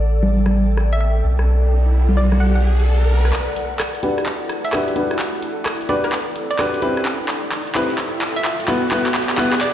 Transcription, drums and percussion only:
0.23 high conga
0.46 cross-stick, high conga
0.77 cross-stick
1.39 cross-stick
2.09 high conga
2.32 cross-stick, high conga
3.25 cross-stick
3.33 kick, clap, closed hi-hat
3.56 closed hi-hat
3.80 kick, cross-stick, clap
3.95 closed hi-hat
4.03 closed hi-hat
4.18 cross-stick, closed hi-hat
4.26 kick, clap, closed hi-hat
4.49 cross-stick, closed hi-hat
4.65 closed hi-hat
4.73 kick, cross-stick, clap
4.88 closed hi-hat
4.96 closed hi-hat
5.11 cross-stick
5.19 kick, clap, closed hi-hat
5.42 closed hi-hat
5.66 kick, cross-stick, clap
5.81 closed hi-hat
5.89 closed hi-hat
6.04 cross-stick, closed hi-hat
6.12 kick, clap, closed hi-hat
6.36 closed hi-hat
6.51 closed hi-hat
6.59 kick, cross-stick, clap
6.74 closed hi-hat
6.82 closed hi-hat
6.97 cross-stick
7.05 kick, clap, closed hi-hat
7.29 clap, closed hi-hat
7.52 kick, clap
7.67 closed hi-hat
7.75 clap, closed hi-hat
7.90 closed hi-hat
7.98 kick, clap, closed hi-hat
8.22 clap, closed hi-hat
8.37 closed hi-hat
8.45 kick, clap
8.60 closed hi-hat
8.68 clap, closed hi-hat
8.91 kick, clap, closed hi-hat
9.07 clap
9.15 clap, closed hi-hat
9.30 clap
9.38 kick, clap
9.53 clap, closed hi-hat
9.61 clap, closed hi-hat

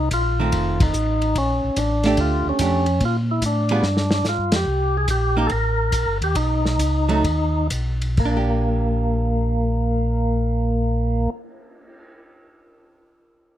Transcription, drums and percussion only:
0.11 kick, hi-hat pedal, ride
0.52 kick, ride
0.80 kick, ride
0.94 hi-hat pedal
1.22 ride
1.36 kick, ride
1.76 kick, hi-hat pedal, ride
2.04 snare, ride
2.17 kick, ride
2.59 kick, hi-hat pedal, ride
2.86 ride
3.01 kick, ride
3.42 kick, hi-hat pedal, ride
3.69 ride
3.83 snare
3.97 snare
4.11 snare
4.24 snare, hi-hat pedal
4.52 snare, ride
5.08 kick, hi-hat pedal, ride
5.49 kick, ride
5.92 kick, hi-hat pedal, ride
6.22 ride
6.35 kick, ride
6.65 snare
6.79 kick, hi-hat pedal, ride
7.09 ride
7.24 kick, ride
7.70 kick, hi-hat pedal, ride
8.02 ride
8.17 kick, crash
8.51 cymbal swell

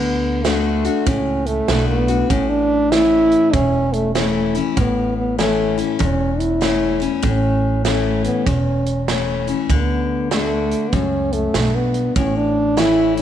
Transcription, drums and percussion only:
0.45 snare, closed hi-hat
0.85 closed hi-hat
1.07 kick, closed hi-hat
1.46 closed hi-hat
1.68 snare, closed hi-hat
2.08 closed hi-hat
2.30 kick, closed hi-hat
2.92 snare, closed hi-hat
3.32 closed hi-hat
3.53 kick, closed hi-hat
3.93 closed hi-hat
4.15 snare, closed hi-hat
4.55 closed hi-hat
4.77 kick, closed hi-hat
5.39 snare, closed hi-hat
5.78 closed hi-hat
6.00 kick, closed hi-hat
6.40 closed hi-hat
6.62 snare, closed hi-hat
7.01 closed hi-hat
7.23 kick, closed hi-hat
7.85 snare, closed hi-hat
8.24 closed hi-hat
8.47 kick, closed hi-hat
8.86 closed hi-hat
9.08 snare, closed hi-hat
9.48 closed hi-hat
9.70 kick, closed hi-hat
10.31 snare, closed hi-hat
10.71 closed hi-hat
10.93 kick, closed hi-hat
11.33 closed hi-hat
11.54 snare, closed hi-hat
11.94 closed hi-hat
12.16 kick, closed hi-hat
12.77 snare, closed hi-hat
13.17 closed hi-hat

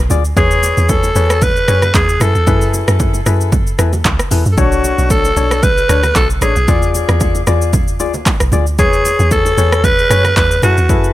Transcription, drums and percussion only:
0.10 low conga, shaker
0.25 shaker
0.37 kick, low conga, shaker
0.51 shaker
0.63 low bongo, shaker
0.77 low bongo, shaker
0.89 kick, high bongo, shaker
1.03 high bongo, shaker
1.16 low bongo, shaker
1.30 cross-stick, shaker
1.42 kick, low conga, shaker
1.56 shaker
1.68 cross-stick, high bongo, shaker
1.82 cross-stick, low bongo, shaker
1.94 kick, clap, high bongo, shaker
2.09 shaker
2.20 cross-stick, low conga, shaker
2.35 shaker
2.47 kick, low conga, shaker
2.61 shaker
2.74 low bongo, shaker
2.88 cross-stick, low bongo, shaker
3.00 kick, high bongo, shaker
3.13 high bongo, shaker
3.26 cross-stick, low bongo, shaker
3.41 shaker
3.52 kick, low conga, shaker
3.67 shaker
3.79 cross-stick, high bongo, shaker
3.93 low bongo, shaker
4.05 kick, clap, high bongo, shaker
4.19 cross-stick, shaker
4.31 open hi-hat, low conga, shaker
4.46 shaker
4.58 kick, low conga, shaker
4.72 shaker
4.84 low bongo, shaker
4.98 low bongo, shaker
5.10 kick, high bongo, shaker
5.24 high bongo, shaker
5.37 low bongo, shaker
5.51 cross-stick, shaker
5.63 kick, low conga, shaker
5.78 shaker
5.89 cross-stick, high bongo, shaker
6.03 cross-stick, low bongo, shaker
6.16 kick, clap, high bongo, shaker
6.30 shaker
6.41 cross-stick, low conga, shaker
6.56 shaker
6.68 kick, low conga, shaker
6.82 shaker
6.95 low bongo, shaker
7.09 cross-stick, low bongo, shaker
7.20 kick, high bongo, shaker
7.35 high bongo, shaker
7.47 cross-stick, low bongo, shaker
7.62 shaker
7.73 kick, low conga, shaker
7.88 shaker
8.00 high bongo, shaker
8.14 low bongo, shaker
8.26 kick, clap, high bongo, shaker
8.40 cross-stick, shaker
8.52 low conga, shaker
8.67 shaker
8.79 kick, low conga, shaker
8.93 shaker
9.05 low bongo, shaker
9.19 low bongo, shaker
9.31 kick, high bongo, shaker
9.45 high bongo, shaker
9.58 low bongo, shaker
9.72 cross-stick, shaker
9.84 kick, low conga, shaker
9.99 shaker
10.10 cross-stick, high bongo, shaker
10.24 cross-stick, low bongo, shaker
10.37 kick, clap, high bongo, shaker
10.51 shaker
10.62 cross-stick, low conga, shaker
10.77 shaker
10.89 kick, low conga, shaker
11.04 shaker

